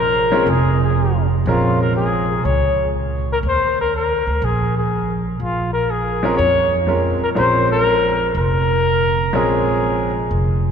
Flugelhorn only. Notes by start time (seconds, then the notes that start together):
0.00 A#4
0.50 G#4
0.84 G#4
1.49 F4
1.81 A#4
1.96 G#4
2.45 C#5
3.33 A#4
3.48 C5
3.81 A#4
3.96 A#4
4.44 G#4
4.78 G#4
5.42 F4
5.73 A#4
5.91 G#4
6.37 C#5
7.23 A#4
7.37 C5
7.72 A#4
8.38 A#4
9.36 G#4